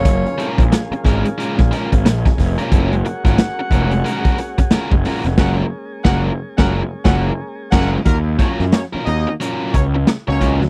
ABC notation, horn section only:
X:1
M:4/4
L:1/16
Q:"Swing 16ths" 1/4=90
K:Gb
V:1 name="Horn section"
[DFBf]12- [DFBf]2 z2 | [DGBg]16 | [DGBg]2 z2 [DGBg]2 z [DGBg]2 z [DGBg]2 z2 [DGBg]2 | [G,B,FB] z [B,DGd] z [B,DGd] z [B,EGe]2 z2 [B,DGd] z2 [B,DGd]2 z |]